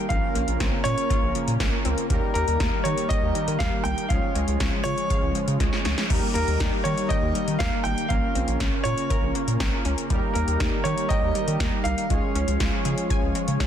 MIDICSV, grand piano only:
0, 0, Header, 1, 2, 480
1, 0, Start_track
1, 0, Tempo, 500000
1, 98, Time_signature, 4, 2, 24, 8
1, 13121, End_track
2, 0, Start_track
2, 0, Title_t, "Grand piano"
2, 0, Program_c, 0, 0
2, 85, Note_on_c, 0, 77, 101
2, 538, Note_off_c, 0, 77, 0
2, 804, Note_on_c, 0, 73, 112
2, 1257, Note_off_c, 0, 73, 0
2, 2245, Note_on_c, 0, 70, 106
2, 2724, Note_on_c, 0, 73, 93
2, 2746, Note_off_c, 0, 70, 0
2, 2965, Note_on_c, 0, 75, 100
2, 2978, Note_off_c, 0, 73, 0
2, 3417, Note_off_c, 0, 75, 0
2, 3444, Note_on_c, 0, 77, 99
2, 3683, Note_on_c, 0, 79, 103
2, 3698, Note_off_c, 0, 77, 0
2, 3913, Note_off_c, 0, 79, 0
2, 3924, Note_on_c, 0, 77, 97
2, 4377, Note_off_c, 0, 77, 0
2, 4643, Note_on_c, 0, 73, 127
2, 5096, Note_off_c, 0, 73, 0
2, 6086, Note_on_c, 0, 70, 105
2, 6565, Note_on_c, 0, 73, 92
2, 6587, Note_off_c, 0, 70, 0
2, 6805, Note_on_c, 0, 75, 102
2, 6819, Note_off_c, 0, 73, 0
2, 7258, Note_off_c, 0, 75, 0
2, 7284, Note_on_c, 0, 77, 102
2, 7523, Note_on_c, 0, 79, 105
2, 7538, Note_off_c, 0, 77, 0
2, 7763, Note_on_c, 0, 77, 99
2, 7778, Note_off_c, 0, 79, 0
2, 8216, Note_off_c, 0, 77, 0
2, 8482, Note_on_c, 0, 73, 114
2, 8936, Note_off_c, 0, 73, 0
2, 9922, Note_on_c, 0, 70, 92
2, 10404, Note_on_c, 0, 73, 95
2, 10424, Note_off_c, 0, 70, 0
2, 10644, Note_on_c, 0, 75, 105
2, 10658, Note_off_c, 0, 73, 0
2, 11333, Note_off_c, 0, 75, 0
2, 11365, Note_on_c, 0, 77, 101
2, 13013, Note_off_c, 0, 77, 0
2, 13121, End_track
0, 0, End_of_file